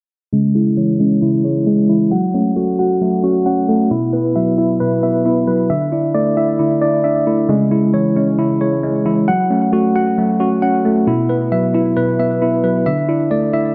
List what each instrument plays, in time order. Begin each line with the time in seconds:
0.33 synth keys C#3, tine electric piano G#3
0.55 synth keys G#3, tine electric piano E4
0.77 synth keys E3, tine electric piano C#5
1.00 tine electric piano G#3, synth keys C#4
1.22 synth keys C#3, tine electric piano E4
1.44 synth keys G#3, tine electric piano C#5
1.67 tine electric piano G#3, synth keys G#3
1.89 synth keys E3, tine electric piano E4
2.11 synth keys F#3, tine electric piano F#5
2.34 tine electric piano A3, synth keys C#4
2.56 synth keys A3, tine electric piano F#4
2.79 synth keys F#4, tine electric piano F#5
3.01 synth keys F#3, tine electric piano A3
3.23 synth keys C#4, tine electric piano F#4
3.46 synth keys C#4, tine electric piano F#5
3.69 tine electric piano A3, synth keys A3
3.91 synth keys B2, tine electric piano E4
4.13 synth keys B3, tine electric piano B4
4.36 synth keys F#3, tine electric piano E5
4.58 tine electric piano E4, synth keys E4
4.80 synth keys B2, tine electric piano B4
5.03 synth keys B3, tine electric piano E5
5.25 synth keys B3, tine electric piano E4
5.47 synth keys F#3, tine electric piano B4
5.70 synth keys D3, tine electric piano E5
5.92 synth keys D4, tine electric piano E4
6.15 synth keys A3, tine electric piano D5
6.37 synth keys E4, tine electric piano E5
6.59 synth keys D3, tine electric piano E4
6.82 synth keys D4, tine electric piano D5
7.04 synth keys D4, tine electric piano E5
7.27 synth keys A3, tine electric piano E4
7.49 synth keys C#3, tine electric piano G#3
7.71 synth keys G#3, tine electric piano E4
7.94 synth keys E3, tine electric piano C#5
8.16 tine electric piano G#3, synth keys C#4
8.38 synth keys C#3, tine electric piano E4
8.61 synth keys G#3, tine electric piano C#5
8.83 tine electric piano G#3, synth keys G#3
9.05 synth keys E3, tine electric piano E4
9.28 synth keys F#3, tine electric piano F#5
9.50 tine electric piano A3, synth keys C#4
9.72 synth keys A3, tine electric piano F#4
9.95 synth keys F#4, tine electric piano F#5
10.18 synth keys F#3, tine electric piano A3
10.40 synth keys C#4, tine electric piano F#4
10.62 synth keys C#4, tine electric piano F#5
10.85 tine electric piano A3, synth keys A3
11.07 synth keys B2, tine electric piano E4
11.29 synth keys B3, tine electric piano B4
11.52 synth keys F#3, tine electric piano E5
11.74 tine electric piano E4, synth keys E4
11.97 synth keys B2, tine electric piano B4
12.19 synth keys B3, tine electric piano E5
12.41 synth keys B3, tine electric piano E4
12.64 synth keys F#3, tine electric piano B4
12.86 synth keys D3, tine electric piano E5
13.09 synth keys D4, tine electric piano E4
13.31 synth keys A3, tine electric piano D5
13.53 synth keys E4, tine electric piano E5